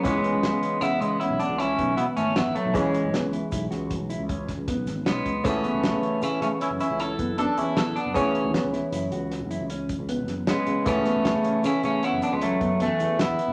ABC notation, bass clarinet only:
X:1
M:7/4
L:1/16
Q:1/4=155
K:Alyd
V:1 name="Bass clarinet"
G,8 B,2 G,2 B,2 B,2 C4 B,2 A,2 B,2 F,2 | E,4 z16 z4 G,4 | A,8 C2 A,2 C2 C2 E4 =D2 C2 E2 B,2 | A,4 z16 z4 G,4 |
A,8 C2 A,2 B,2 B, G, F,4 E,4 B,4 |]